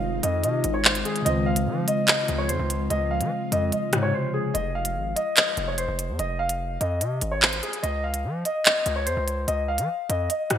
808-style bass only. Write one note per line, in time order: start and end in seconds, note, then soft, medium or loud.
0.00 0.21 F1 loud
0.23 0.45 F2 loud
0.44 0.63 C3 loud
0.64 1.04 G#1 loud
1.26 1.68 C#2 loud
1.67 1.87 F3 loud
2.29 2.51 C#2 loud
2.49 2.59 F2 loud
2.60 2.89 C#2 loud
2.90 3.23 C#2 loud
3.21 3.31 F3 loud
3.52 3.72 F2 loud
3.93 4.13 G#2 loud
4.55 4.97 F1 loud
4.96 5.15 G#1 loud
5.57 5.87 F1 loud
5.88 6.10 F1 loud
6.09 6.19 F2 loud
6.19 6.78 F1 loud
6.81 7.03 F2 loud
7.01 7.21 C3 loud
7.22 7.61 G#1 loud
7.83 8.26 C#2 loud
8.25 8.44 F3 loud
8.86 9.08 C#2 loud
9.07 9.16 F2 loud
9.17 9.47 C#2 loud
9.48 9.80 C#2 loud
9.79 9.88 F3 loud
10.09 10.29 F2 loud
10.51 10.58 G#2 loud